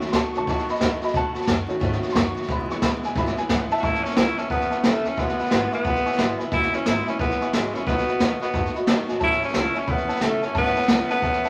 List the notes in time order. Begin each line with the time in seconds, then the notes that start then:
0.01 A3 B3 F#4, muted upright bass stroke, snare
0.07 snare
0.12 E2 D#3 A3 B3 F#4 A5 C6, kick, snare, hi-hat pedal
0.16 C#6
0.34 B1 D#3 A3 B3 C#4 F#4 A5, snare
0.38 C#6
0.47 D#2 B2 D#3 A3 B3 F#4 A5 C#6, kick, snare
0.58 snare
0.67 A3 B3 F#4 D#5 B5, muted upright bass stroke, snare
0.75 snare
0.80 E2 D#3 A3 B3 F#4 D#5 B5, kick, snare, hi-hat pedal
1.01 A3 B3 F#4 D#5 B5, muted upright bass stroke, snare
1.07 snare
1.13 B1 B2 D#3 A3 B3 F#4 F#5 A5, kick, snare
1.34 D#2 A3 B3 F#4, snare
1.41 snare
1.45 F#2 D#3 A3 B3 F#4, kick, snare, hi-hat pedal
1.66 D#3 A3 B3 C#4 F#4, muted upright bass stroke, snare
1.79 G#2 B2 D#3 A3 B3 F#4, kick, snare
1.92 snare
2.00 A3 B3 F#4, muted upright bass stroke, snare
2.09 C6, snare
2.14 F#2 D#3 A3 B3 F#4 C#6, kick, snare, hi-hat pedal
2.35 A3 B3 F#4, muted upright bass stroke, snare
2.43 snare
2.48 E1 E2 B2 E3 G#3 B3 E4, kick, snare
2.52 B5
2.67 E3 G#3 B3 E4, muted upright bass stroke, snare
2.72 C#6
2.81 A1 E3 G#3 B3 E4, kick, snare, hi-hat pedal
2.85 B5
3.02 E1 E3 G#3 B3 E4 G#5, snare
3.15 G#1 E2 B2 E3 G#3 B3 E4 B5, kick, snare
3.26 snare
3.36 E3 G#3 B3 E4 G#5, muted upright bass stroke, snare
3.48 A1 E3 G#3 B3 E4 F#5, kick, snare, hi-hat pedal
3.70 E3 G#3 B3 E4 E5 A5, muted upright bass stroke, snare
3.77 F#4, snare
3.82 A1 A2 E3 A3 C#4 E4 E5 A5 C#6, kick, snare
3.94 snare
4.03 A3 C#4 E4 E5 A5 C#6, muted upright bass stroke, snare
4.10 snare
4.16 C#2 A2 E3 A3 C#4 E4 E5 A5 C#6, snare, hi-hat pedal
4.37 A3 C#4 E4 E5 A5 E6, muted upright bass stroke, snare
4.50 E2 E3 A3 B3 C#4 E4 E5 A5 D#6, kick, snare
4.61 snare
4.71 A3 C#4 E4 E5 A5 C#6, muted upright bass stroke, snare
4.83 C#2 A2 E3 A3 C#4 E4 E5 A5 B5, snare, hi-hat pedal
5.04 D#2 A3 C#4 E4 E5 A5 C#6, snare
5.16 E1 E2 B2 E3 G#3 B3 E4 E5 G#5 B5, kick, snare
5.28 snare
5.37 E3 G#3 B3 E4 E5 G#5 B5, muted upright bass stroke, snare
5.45 snare
5.50 G#1 E2 B2 E3 G#3 B3 E4 E5 G#5 B5, snare, hi-hat pedal
5.71 E3 G#3 B3 E4 E5 G#5 C#6, muted upright bass stroke, snare
5.83 B1 E3 G#3 B3 E4 E5 G#5 B5, kick, snare
5.95 snare
6.04 E3 G#3 B3 E4 E5 G#5 C#6, muted upright bass stroke, snare
6.12 snare
6.17 G#1 E2 B2 E3 G#3 B3 E4 E5 G#5 B5, snare, hi-hat pedal
6.38 C#2 E3 G#3 B3 E4 E5 G#5 B5, snare
6.51 E1 E2 B2 E3 G#3 B3 E4 E5 G#5 B5, kick, snare
6.62 snare
6.72 E3 G#3 B3 C#4 E4 E5 G#5 B5, muted upright bass stroke, snare
6.86 G#1 E2 B2 E3 G#3 B3 E4 G#5 B5, snare, hi-hat pedal
7.06 E3 G#3 B3 C#4 E4 E5 G#5 B5, muted upright bass stroke, snare
7.19 B1 E3 G#3 B3 E4 E5 G#5 B5, kick, snare
7.30 snare
7.40 E3 G#3 B3 E4 E5 G#5 C#6, muted upright bass stroke, snare
7.53 G#1 E2 B2 E3 G#3 B3 E4 E5 G#5 C#6, snare, hi-hat pedal
7.73 A#1 E3 G#3 B3 C#4 E4 E5 G#5 B5, snare
7.86 B1 B2 D#3 A3 B3 F#4 D#5 F#5 B5, kick, snare
7.98 snare
8.07 A3 B3 F#4 D#5 F#5 B5, muted upright bass stroke, snare
8.19 D#2 B2 D#3 A3 B3 F#4 F#5 B5, snare, hi-hat pedal
8.40 A3 B3 F#4 D#5 F#5 B5, muted upright bass stroke, snare
8.52 F#2 D#3 A3 B3 F#4 D#5 F#5 A5, kick, snare
8.65 snare
8.74 A3 B3 F#4 D#5 F#5 B5, muted upright bass stroke, snare
8.86 D#2 B2 D#3 A3 B3 F#4 D#5 F#5 A5, snare, hi-hat pedal
9.07 A1 A3 B3 F#4 D#5 F#5 G#5, snare
9.19 A1 A2 E3 A3 C#4 E4 C#5 E5 A5, kick, snare
9.24 E4
9.32 snare
9.39 A3 C#4 E4 C#5 E5 B5, muted upright bass stroke, snare
9.45 C#4, snare
9.53 C#2 A2 E3 A3 C#4 E4 C#5 E5 A5, snare, hi-hat pedal
9.58 E4
9.74 A3 C#4 E4 C#5 E5 G#5, muted upright bass stroke, snare
9.79 C#4
9.85 E2 E3 A3 C#4 E4 C#5 E5 B5, kick, snare
9.90 B3
9.97 snare
10.07 A3 C#4 E4 C#5 E5 A5, muted upright bass stroke, snare
10.15 snare
10.21 C#2 A2 E3 A3 C#4 E4 C#5 E5 A5, snare, hi-hat pedal
10.41 F#1 A3 C#4 E4 C#5 E5 A5, snare
10.53 A1 A2 E3 A3 C#4 C#5 E5 A5, kick, snare
10.57 B3 E4
10.65 snare
10.75 A3 C#4 E4 C#5 E5 A5, muted upright bass stroke, snare
10.82 snare
10.88 C#2 A2 E3 A3 C#4 E4 C#5 E5 A5, snare, hi-hat pedal
11.08 A3 B3 C#4 E4 C#5 E5 A5, muted upright bass stroke, snare
11.21 E2 E3 A3 C#4 E4 C#5 E5 A5, kick, snare
11.33 snare
11.43 A3 C#4 E4 C#5 E5 A5, muted upright bass stroke, snare